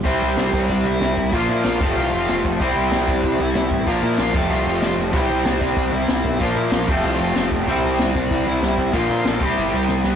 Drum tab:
CC |x-x-x-x-|x-xxx-x-|x-x-x-x-|x-x-x-x-|
SD |--o---o-|--o---o-|--o---o-|--o---oo|
BD |o--oo--o|o--o---o|o--oo--o|o--o----|

CC |x-x-x-x-|x-x-x-x-|x-x-x-x-|x-x-x---|
SD |--o---o-|--o---o-|--o---o-|--o---oo|
BD |o--oo--o|o--o---o|o--oo--o|o--o----|